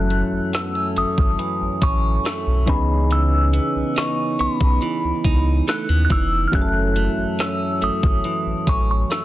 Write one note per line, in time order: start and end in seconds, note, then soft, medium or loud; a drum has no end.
0.00 0.23 F#1 loud
0.00 2.76 F#2 medium
0.00 1.39 E3 medium
0.00 2.63 F#3 medium
0.00 2.63 A3 medium
0.00 2.64 C#4 medium
0.00 2.64 E4 medium
0.00 2.64 A4 medium
0.00 0.50 F#6 loud
0.10 0.95 A3 medium
0.10 closed hi-hat medium
0.32 0.41 G#1 soft
0.53 0.75 B3 medium
0.53 0.98 E6 loud
0.53 snare loud
0.53 closed hi-hat medium
0.75 1.81 C#4 medium
0.96 1.05 G#1 soft
0.96 2.24 A3 medium
0.96 1.85 D#6 loud
0.96 closed hi-hat medium
1.18 1.36 G#1 medium
1.18 kick loud
1.39 3.99 E3 medium
1.39 closed hi-hat medium
1.61 1.70 A1 medium
1.82 2.19 A1 medium
1.82 3.56 C#4 medium
1.82 2.71 C#6 loud
1.82 kick medium
1.82 closed hi-hat medium
2.25 2.76 A3 medium
2.25 snare loud
2.25 closed hi-hat medium
2.47 2.69 B1 medium
2.66 3.60 C#2 loud
2.66 3.09 C#3 medium
2.66 6.05 E3 medium
2.66 6.06 B3 medium
2.66 6.06 C#4 medium
2.66 6.07 D#4 medium
2.66 6.07 G#4 medium
2.66 3.13 B5 medium
2.66 kick loud
2.66 closed hi-hat medium
3.11 6.53 C#3 medium
3.11 4.00 E6 loud
3.11 closed hi-hat medium
3.53 4.38 B3 medium
3.53 closed hi-hat medium
3.76 3.84 B1 soft
3.96 5.24 D#4 medium
3.96 4.41 C#6 medium
3.96 snare loud
3.96 closed hi-hat medium
4.39 4.48 B1 soft
4.39 5.67 B3 medium
4.39 5.72 B5 loud
4.39 closed hi-hat medium
4.61 4.79 B1 medium
4.61 kick loud
4.82 6.10 E3 medium
4.82 closed hi-hat medium
5.04 5.12 C#2 soft
5.25 5.62 C#2 medium
5.25 6.62 D#4 medium
5.25 kick loud
5.25 closed hi-hat medium
5.68 5.89 A3 medium
5.68 6.04 F#6 medium
5.68 snare loud
5.68 closed hi-hat medium
5.89 6.08 D#2 loud
5.89 6.62 B3 medium
6.05 6.11 F#6 medium
6.10 6.47 F1 medium
6.10 8.25 E3 medium
6.10 6.48 E6 loud
6.10 kick loud
6.10 closed hi-hat medium
6.48 9.25 F#3 medium
6.48 6.54 F6 medium
6.52 7.09 F#1 loud
6.52 9.25 F#2 medium
6.52 9.25 A3 medium
6.52 9.25 C#4 medium
6.52 9.25 E4 medium
6.52 6.61 G#4 medium
6.52 7.42 F#6 loud
6.52 kick loud
6.52 closed hi-hat medium
6.62 9.25 A4 medium
6.96 7.80 A3 medium
6.96 closed hi-hat medium
7.18 7.26 G#1 soft
7.39 8.67 C#4 medium
7.39 7.84 E6 loud
7.39 snare loud
7.39 closed hi-hat medium
7.82 7.90 G#1 soft
7.82 9.09 A3 medium
7.82 8.71 D#6 loud
7.82 closed hi-hat medium
8.03 8.22 G#1 medium
8.03 kick loud
8.24 9.25 E3 medium
8.24 closed hi-hat medium
8.46 8.55 A1 soft
8.67 9.04 A1 medium
8.67 9.25 C#4 medium
8.67 8.90 C#6 medium
8.67 kick medium
8.67 closed hi-hat medium
8.91 9.12 C#6 medium
9.10 9.25 A3 medium
9.10 9.25 E6 medium
9.10 snare loud
9.10 closed hi-hat medium